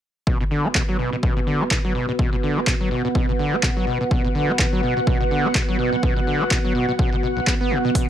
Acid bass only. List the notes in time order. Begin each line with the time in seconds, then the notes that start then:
0.27 B2
0.41 B2
0.51 D3
0.65 B3
0.75 B2
0.89 F#3
0.99 B2
1.13 B2
1.23 B2
1.36 B2
1.47 D3
1.61 B3
1.71 B2
1.85 F#3
1.95 B2
2.09 B2
2.19 B2
2.33 B2
2.43 D3
2.57 B3
2.67 B2
2.81 F#3
2.91 B2
3.05 B2
3.15 B2
3.29 B2
3.39 D3
3.53 B3
3.63 B2
3.77 F#3
3.87 B2
4.01 B2
4.11 B2
4.25 B2
4.35 D3
4.49 B3
4.59 B2
4.73 F#3
4.83 B2
4.97 B2
5.07 B2
5.21 B2
5.31 D3
5.45 B3
5.55 B2
5.69 F#3
5.79 B2
5.93 B2
6.03 B2
6.16 B2
6.27 D3
6.41 B3
6.51 B2
6.65 F#3
6.75 B2
6.89 B2
6.99 B2
7.13 B2
7.23 B2
7.37 B1
7.47 B3
7.61 B3
7.71 B2
7.85 B2
7.95 B2